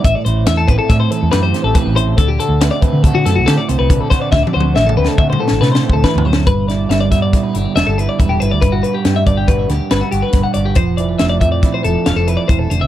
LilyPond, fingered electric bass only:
\new Staff \with { instrumentName = "Fingered electric bass" } { \clef bass \time 5/4 \key a \dorian \tempo 4 = 140 a,,16 r16 a,,8 e,8 a,,16 r16 a,8 r16 e,16 fis,8 r16 a,,16 r16 a,,8. | d,8 r16 d,8 r8 d8 d16 fis,16 c,16 d16 r16 c,16 c,8 r8. | d,16 r16 d,8 a,,8 d,16 r16 d8 r16 a,,16 c8 r16 d,16 r16 d,8. | g,,4 g,,8 g,8 r8 g,,16 r16 e,,16 g,,8 r16 e,,8 g,,16 d,16 |
g,,8 r8 g,8 g,,4 d,16 r16 g,,16 r16 g,,16 r16 g,,16 r16 g,,8 | f,,4 f,,8 f,8 r8 f,,16 r16 e,,16 f,,8 r16 e,,8 f,,16 c,16 | }